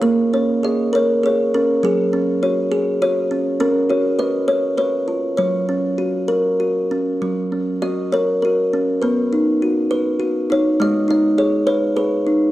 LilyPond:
\new Staff \with { instrumentName = "Kalimba" } { \time 3/4 \key fis \major \tempo 4 = 101 << { ais'8 cis''8 dis''8 cis''8 cis''8 ais'8 | gis'4 cis''4 cis''4 | ais'8 cis''8 dis''4 cis''4 | cis''2~ cis''8 r8 |
r4 dis''8 cis''8 ais'4 | b'4. r4 cis''8 | dis''8 dis''8 cis''8 cis''8 b'4 | } \\ { ais8 cis'8 gis'8 ais'8 gis'8 cis'8 | fis8 cis'8 fis'8 gis'8 fis'8 cis'8 | cis'8 fis'8 b'8 cis''8 b'8 eis'8 | fis8 cis'8 fis'8 ais'8 fis'8 cis'8 |
fis8 cis'8 fis'8 ais'8 fis'8 cis'8 | b8 dis'8 fis'8 b'8 fis'8 dis'8 | gis8 dis'8 gis'8 b'8 gis'8 dis'8 | } >> }